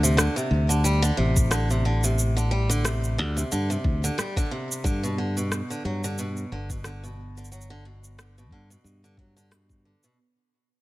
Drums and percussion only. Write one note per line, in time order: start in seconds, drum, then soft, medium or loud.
0.04 shaker medium
0.18 cross-stick medium
0.18 shaker medium
0.37 shaker soft
0.70 shaker medium
0.85 shaker medium
1.04 shaker soft
1.36 kick loud
1.36 shaker medium
1.51 cross-stick medium
1.51 shaker medium
1.70 shaker soft
2.04 shaker medium
2.19 shaker soft
2.38 shaker soft
2.71 shaker medium
2.85 cross-stick medium
2.85 shaker medium
3.04 shaker soft
3.38 shaker medium
3.52 shaker soft
3.71 shaker soft
3.84 kick medium
4.04 shaker medium
4.19 cross-stick medium
4.19 shaker soft
4.36 kick medium
4.36 shaker soft
4.72 shaker medium
4.84 kick loud
4.84 shaker soft
5.04 shaker soft
5.37 shaker medium
5.52 cross-stick medium
5.52 shaker soft
5.71 shaker soft
6.04 shaker medium
6.18 shaker soft
6.37 shaker soft
6.70 kick medium
6.70 shaker medium
6.84 cross-stick medium
6.84 shaker soft
7.04 shaker soft
7.37 shaker soft
7.45 shaker soft
7.52 shaker medium
7.61 shaker soft
8.04 shaker medium
8.19 cross-stick loud
8.19 shaker soft
8.38 shaker soft
8.51 kick medium
8.71 shaker medium
8.86 shaker soft
9.04 shaker soft
9.17 kick medium
9.37 shaker medium
9.52 cross-stick medium
9.52 shaker soft
9.69 kick loud
9.69 shaker soft
10.03 shaker medium